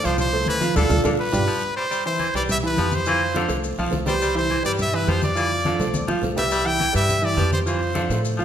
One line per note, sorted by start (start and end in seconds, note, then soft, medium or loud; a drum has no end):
0.03 0.45 C2 loud
0.03 0.27 F3 medium
0.03 0.28 F4 loud
0.03 0.19 C5 loud
0.03 0.28 F5 loud
0.03 short guiro medium
0.03 maracas medium
0.18 0.46 C5 loud
0.18 high conga soft
0.18 low conga medium
0.18 long guiro medium
0.18 maracas loud
0.33 0.57 A3 medium
0.33 0.57 A4 medium
0.33 0.57 C5 medium
0.46 0.74 D2 loud
0.46 0.63 E3 medium
0.46 0.75 B4 loud
0.46 high conga medium
0.46 short guiro medium
0.46 maracas soft
0.60 0.73 F3 loud
0.60 0.73 F4 loud
0.60 0.74 F5 medium
0.60 high conga medium
0.60 short guiro medium
0.60 maracas medium
0.76 0.87 D2 loud
0.76 0.91 D3 medium
0.76 0.85 D4 loud
0.76 0.85 F4 loud
0.76 0.85 A4 loud
0.76 1.03 A4 loud
0.76 low conga loud
0.76 long guiro loud
0.76 maracas loud
0.89 1.01 D2 loud
0.89 0.99 D4 loud
0.89 0.99 F4 loud
0.89 0.99 A4 loud
0.89 low conga loud
0.89 long guiro loud
0.89 maracas loud
1.03 1.16 D2 loud
1.03 1.27 D3 medium
1.03 1.13 D4 loud
1.03 1.14 F4 loud
1.03 1.14 A4 loud
1.03 low conga loud
1.03 long guiro loud
1.03 maracas loud
1.20 1.73 B4 loud
1.32 1.45 G1 loud
1.32 1.42 D4 loud
1.32 1.42 F4 loud
1.32 1.42 G4 loud
1.32 low conga loud
1.32 long guiro loud
1.32 maracas loud
1.47 1.63 F3 medium
1.76 1.85 G3 medium
1.76 2.03 C5 medium
1.91 2.06 G3 medium
1.91 high conga soft
1.91 long guiro medium
1.91 maracas medium
2.05 2.29 E3 medium
2.05 2.30 E4 medium
2.05 2.33 C5 medium
2.05 2.30 E5 medium
2.05 high conga soft
2.19 2.27 E3 medium
2.19 high conga medium
2.19 short guiro medium
2.19 maracas soft
2.34 2.75 C2 medium
2.34 2.57 G3 medium
2.34 2.58 G3 medium
2.34 2.58 G4 medium
2.34 2.59 B4 medium
2.34 2.42 D5 loud
2.34 short guiro medium
2.34 maracas medium
2.49 2.57 E5 loud
2.49 high conga soft
2.49 low conga medium
2.49 long guiro medium
2.49 maracas medium
2.63 2.75 E3 medium
2.63 2.75 E4 loud
2.63 2.96 B4 medium
2.63 2.76 E5 medium
2.63 high conga soft
2.63 maracas soft
2.77 3.45 F2 medium
2.77 2.93 F3 medium
2.77 3.02 G3 medium
2.77 3.02 G4 medium
2.77 3.02 B4 medium
2.77 high conga medium
2.77 short guiro medium
2.77 maracas soft
2.92 3.51 C5 loud
2.92 high conga medium
2.92 short guiro medium
2.92 maracas medium
3.06 3.22 E3 loud
3.06 3.30 F3 medium
3.06 3.30 F4 medium
3.06 3.30 F5 medium
3.06 high conga soft
3.06 long guiro medium
3.06 maracas medium
3.20 high conga soft
3.20 maracas soft
3.34 3.59 D3 medium
3.34 3.46 F3 medium
3.34 3.47 F4 medium
3.34 3.47 F5 medium
3.34 high conga medium
3.34 short guiro medium
3.34 maracas soft
3.48 3.76 C2 medium
3.48 3.72 A3 medium
3.48 3.73 A4 medium
3.48 3.73 C5 medium
3.48 high conga soft
3.48 short guiro medium
3.48 maracas medium
3.64 high conga soft
3.64 long guiro medium
3.64 maracas medium
3.78 3.92 B1 medium
3.78 3.90 F3 loud
3.78 3.94 F3 medium
3.78 3.91 F4 loud
3.78 3.90 F5 medium
3.78 high conga soft
3.78 maracas soft
3.91 4.59 C2 medium
3.91 4.03 A3 medium
3.91 4.04 A4 medium
3.91 4.04 C5 medium
3.91 high conga medium
3.91 short guiro medium
3.91 maracas soft
4.06 4.30 G3 medium
4.06 4.15 G3 medium
4.06 4.30 G4 medium
4.06 4.30 B4 medium
4.06 4.34 C5 loud
4.06 high conga medium
4.06 short guiro medium
4.06 maracas medium
4.21 4.37 G3 loud
4.21 high conga soft
4.21 maracas medium
4.35 4.59 E3 medium
4.35 4.59 E4 medium
4.35 4.63 C5 loud
4.35 4.59 E5 loud
4.35 high conga soft
4.35 maracas soft
4.50 4.58 E3 medium
4.50 high conga medium
4.50 short guiro medium
4.63 5.05 G2 medium
4.63 4.87 G3 medium
4.63 4.88 G3 medium
4.63 4.88 G4 medium
4.63 4.88 B4 medium
4.63 4.72 D5 loud
4.63 short guiro medium
4.63 maracas medium
4.79 4.97 E5 loud
4.79 high conga soft
4.79 low conga medium
4.79 long guiro medium
4.79 maracas medium
4.93 5.05 E3 medium
4.93 5.05 E4 loud
4.93 5.11 B4 medium
4.93 5.06 E5 loud
4.93 high conga soft
4.93 maracas soft
5.07 5.74 F2 medium
5.07 5.23 F3 medium
5.07 5.31 G3 medium
5.07 5.31 G4 medium
5.07 5.31 B4 medium
5.07 5.23 C5 medium
5.07 high conga medium
5.07 short guiro medium
5.07 maracas soft
5.21 6.06 D5 loud
5.21 high conga medium
5.21 short guiro medium
5.21 maracas medium
5.35 5.52 E3 medium
5.35 5.60 F3 medium
5.35 5.60 F4 medium
5.35 5.60 F5 medium
5.35 high conga soft
5.35 long guiro medium
5.35 maracas medium
5.51 high conga soft
5.51 maracas soft
5.65 5.88 D3 medium
5.65 5.77 F3 medium
5.65 5.77 F4 medium
5.65 5.77 F5 medium
5.65 high conga medium
5.65 short guiro medium
5.65 maracas soft
5.79 6.07 C2 medium
5.79 6.03 A3 medium
5.79 6.03 A4 medium
5.79 6.04 C5 medium
5.79 low conga medium
5.79 short guiro medium
5.79 maracas medium
5.94 high conga loud
5.94 long guiro medium
5.94 maracas medium
6.08 6.22 B1 medium
6.08 6.23 F3 medium
6.08 6.20 F3 medium
6.08 6.20 F4 medium
6.08 6.21 F5 medium
6.08 low conga medium
6.08 maracas soft
6.22 6.89 C2 medium
6.22 6.34 A3 medium
6.22 6.34 A4 medium
6.22 6.35 C5 medium
6.22 low conga medium
6.22 short guiro medium
6.22 maracas soft
6.36 6.60 G3 medium
6.36 6.45 G3 medium
6.36 6.60 G4 medium
6.36 6.61 B4 medium
6.36 6.68 E5 loud
6.36 low conga loud
6.36 short guiro medium
6.36 maracas medium
6.51 6.67 G3 medium
6.51 high conga soft
6.51 maracas medium
6.65 6.89 E3 medium
6.65 6.89 E4 medium
6.65 6.89 E5 medium
6.65 6.95 G5 loud
6.65 high conga soft
6.65 maracas soft
6.80 6.87 E3 medium
6.80 high conga medium
6.80 short guiro medium
6.93 7.35 G2 medium
6.93 7.17 G3 medium
6.93 7.18 G4 medium
6.93 7.18 B4 medium
6.93 7.26 E5 loud
6.93 short guiro medium
6.93 maracas medium
7.09 high conga soft
7.09 low conga medium
7.09 maracas medium
7.22 7.34 E3 loud
7.22 7.35 E4 medium
7.22 7.53 D5 loud
7.22 7.35 E5 medium
7.22 high conga soft
7.22 maracas soft
7.37 8.04 F2 medium
7.37 7.52 F3 medium
7.37 7.61 G3 medium
7.37 7.61 G4 medium
7.37 7.61 B4 medium
7.37 high conga medium
7.37 short guiro medium
7.52 7.60 C5 medium
7.52 high conga medium
7.52 short guiro medium
7.52 maracas medium
7.66 7.82 E3 medium
7.66 7.90 F3 medium
7.66 7.90 F4 medium
7.66 8.20 C5 medium
7.66 7.90 F5 medium
7.66 high conga soft
7.66 long guiro medium
7.66 maracas medium
7.82 high conga soft
7.82 maracas soft
7.94 8.17 D3 medium
7.94 8.07 F3 medium
7.94 8.08 F4 medium
7.94 8.08 F5 medium
7.94 high conga loud
7.94 short guiro medium
7.94 maracas soft
8.10 8.37 A2 medium
8.10 8.34 A3 medium
8.10 8.34 A4 medium
8.10 8.35 C5 medium
8.10 high conga soft
8.10 short guiro medium
8.10 maracas medium
8.25 high conga soft
8.25 long guiro medium
8.25 maracas medium
8.37 8.45 D2 medium
8.37 8.45 F3 medium
8.37 8.45 F4 loud
8.37 8.45 F5 loud
8.37 high conga soft
8.37 maracas soft